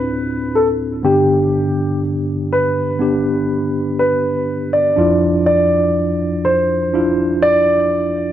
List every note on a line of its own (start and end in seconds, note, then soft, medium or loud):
0.00 1.00 D2 soft
0.00 1.00 A2 soft
0.00 0.94 C4 medium
0.00 0.94 D4 soft
0.00 0.95 E4 medium
0.00 0.57 B4 medium
0.55 0.66 A4 medium
1.03 4.94 G2 soft
1.03 4.94 D3 soft
1.03 2.91 B3 medium
1.03 2.91 D4 medium
1.03 1.99 G4 medium
1.03 2.92 G4 medium
2.53 3.96 B4 medium
2.99 4.87 B3 medium
2.99 4.87 D4 soft
2.99 4.88 G4 medium
3.99 4.69 B4 medium
4.73 5.43 D5 medium
4.96 8.32 F2 soft
4.96 8.32 F3 medium
4.96 6.84 D4 medium
4.96 6.84 E4 medium
4.96 6.85 F4 medium
5.46 6.48 D5 medium
6.45 7.46 C5 medium
6.94 8.32 D4 medium
6.94 8.32 E4 medium
6.94 8.32 F4 medium
7.42 8.32 D5 medium